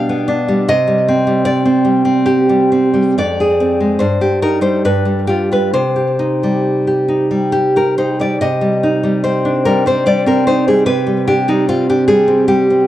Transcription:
nylon-string guitar
Already playing: B2 G3 D4 F5
0.09 B3
0.28 D4
0.48 G3
0.68 C3 D#5
0.87 G3
1.08 C4
1.27 G3
1.45 D5
1.65 C4
1.85 G3
2.05 C4
2.26 G4
2.49 G3
2.72 C4
2.94 G3
3.18 F2 D5
3.40 G#4
3.60 C4
3.80 G#3
3.99 G2 C5
4.21 G4
4.42 D#4 A#4
4.61 G3 C5
4.85 G2 B4
5.05 G3
5.27 F4 G4
5.52 G3 B4
5.74 C3 C5
5.96 G4
6.19 D#4
6.43 G3
6.87 G4
7.08 D#4
7.31 G3
7.52 G4
7.76 G4 A#4
7.98 D#4 C5
8.20 G3 D5
8.41 C3 D#5
8.61 G3
8.83 D#4
9.03 G3
9.24 C4 C5
9.45 D4
9.65 G3 A#4
9.86 C4 C5
10.06 G3 D5
10.26 C4 A#4
10.47 D#4 C5
10.68 G3 G#4
10.86 C3 B4
11.07 G3
11.28 D4 G4
11.48 G3 D#4
11.69 C4 F4
11.89 D4 G4
12.08 G3 G#4
12.28 C4
12.48 G3 G4
12.70 C4

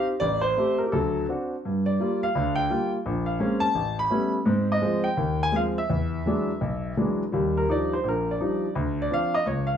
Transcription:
grand piano
Already playing: C4 D#4 G4
0.20 A1 D5
0.41 C5
0.57 A3 C4 G4
0.78 A#4
0.86 G4
0.92 D2 F#3 A4
1.29 C4 D4 F#4
1.65 G2
1.86 D5
2.00 G3 A#3 F4
2.23 F5
2.35 D2 D3
2.56 G5
2.70 G3 A#3 F4
3.06 A#1
3.26 F5
3.40 G#3 A#3 C4 C#4
3.60 A5
3.75 A1
3.99 B5
4.10 G3 A3 B3 C#4
4.46 G#2 C4
4.72 D#5
4.82 F3 G#3 C4
5.04 G5
5.17 D#2
5.43 G#5
5.52 F3 G#3 C4
5.56 F5
5.78 E5
5.90 E2
6.26 E3 F#3 G#3 D4
6.61 B1
6.97 E3 F#3 G#3 D4
7.32 D#2 G3
7.57 A#4
7.68 F3 G3 D4 D#4 D5
7.93 C5
8.04 A#1
8.08 A#4
8.31 D5
8.40 F3 G3 D4 D#4
8.75 D2
9.02 D5
9.11 F3 C4 D4 F5
9.34 D#5
9.46 C#2 C#5
9.67 F5

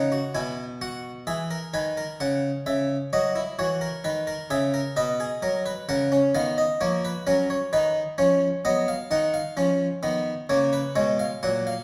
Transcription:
harpsichord
Already playing: C#3 D#4 F#5
0.12 F#4
0.35 B2 E4 G#5
0.81 F#4 F#5
1.27 E3 G#4 E5
1.51 A#4
1.74 D#3 B4 G#5
1.97 A#4
2.20 C#3 F#5
2.66 C#3 E5
3.13 F#3 F#4 D#5
3.36 E4
3.59 E3 F#4 C#5
3.81 A#4
4.04 D#3 B4
4.27 A#4
4.50 C#3 G#4 E5
4.74 A#4
4.96 B2 B4 D#5
5.20 G#4
5.42 F#3 A#4
5.66 B4
5.89 C#3 A#4 F#5
6.12 C#4
6.35 D#3 B3 F5
6.58 D#5
6.81 F3 A#3 C#5
7.05 B4
7.27 F#3 C#4 A#4
7.50 C#5
7.73 D#3 D#4 B4
8.18 F3 C#4 C#5
8.65 F#3 B3 D#5
8.88 F5
9.11 D#3 D#4 F#5
9.34 F5
9.57 F3 C#4
10.03 D#3 B3
10.49 C#3 A#3 C#5
10.73 B4
10.96 B2 G#3 C#5
11.19 F5
11.43 A#2 F#3 F#5
11.67 F5

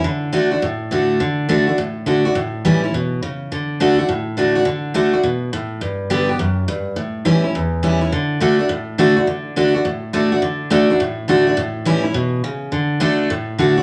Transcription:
steel-string acoustic guitar
0.04 D3
0.33 D3 A3 D4 F#4
0.51 D4 F#4
0.62 A2
0.91 D3 A3 D4 F#4
1.20 D3
1.49 D3 A3 D4 F#4
1.67 D4 F#4
1.78 A2
2.06 D3 A3 D4 F#4
2.25 D4 F#4
2.35 A2
2.65 E3 G3 C#4 E4
2.84 C#4 E4
2.94 B2
3.23 C#3
3.52 D3
3.80 D3 A3 D4 F#4
3.99 D4 F#4
4.08 A2
4.37 D3 A3 D4 F#4
4.55 D4 F#4
4.65 D3
4.94 D3 A3 D4 F#4
5.13 D4 F#4
5.23 B2
5.53 A2
5.81 G2
6.10 D3 G3 B3 G4
6.29 B3 G4
6.39 F#2
6.68 G2
6.96 A2
7.25 E3 G3 C#4 E4
7.44 C#4 E4
7.55 E2
7.83 E3 G3 C#4 E4
8.01 C#4 E4
8.12 D3
8.40 D3 A3 D4 F#4
8.59 D4 F#4
8.69 A2
8.98 D3 A3 D4 F#4
9.16 D4 F#4
9.27 D3
9.56 D3 A3 D4 F#4
9.74 D4 F#4
9.85 A2
10.13 D3 A3 D4 F#4
10.32 D4 F#4
10.42 D3
10.70 D3 A3 D4 F#4
10.90 D4 F#4
11.00 A2
11.28 D3 A3 D4 F#4
11.47 D4 F#4
11.57 A2
11.85 E3 G3 C#4 E4
12.03 C#4 E4
12.14 B2
12.44 C#3
12.72 D3
13.00 D3 A3 D4 F#4
13.30 A2
13.58 D3 A3 D4 F#4
13.77 D4 F#4

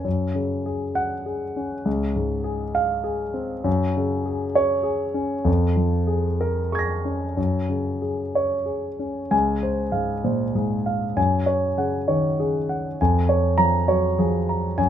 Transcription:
grand piano
0.05 F#2
0.34 C#3
0.66 G#4
0.95 F#5
1.26 G#4
1.56 C#4
1.85 C#2
2.16 G#2
2.44 G#4
2.75 F5
3.04 G#4
3.34 C4
3.64 F#2
3.97 C#3
4.26 G#4
4.55 C#5
4.83 G#4
5.14 C#4
5.45 F2
5.76 F3
6.07 G#4
6.41 A#4
6.72 G#4 C#6 G#6
6.79 A#6
7.05 C#4
7.37 F#2
7.69 C#3
8.02 G#4
8.35 C#5
8.66 G#4
8.99 C#4
9.31 C#2 G#5
9.63 C5
9.92 G#2 F5
10.24 A#2 C5
10.55 G#2 G#4
10.86 F5
11.16 F#2 G#5
11.46 C#5
11.77 C#3 F#5
12.08 D#3 C#5
12.40 C#3 G#4
12.69 F#5
13.01 F2 G#5
13.29 C#5
13.58 F3 A#5
13.88 F#3 C#5
14.18 F3 G#4
14.49 A#5
14.78 F#2 G#5

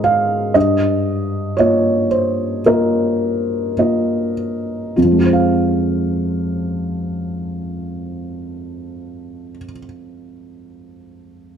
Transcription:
felt piano
Already playing: G#3 G#4 C5 D#5
0.04 F5
0.54 G2 D#5
1.57 A#3 F4 C#5 D#5
2.11 C5
2.66 A#3 F4 A#4 D#5
3.78 A#3 F4 D#5
4.96 F2 F4
5.05 F3
5.12 G#3
5.19 F4
5.25 C5
5.33 F5

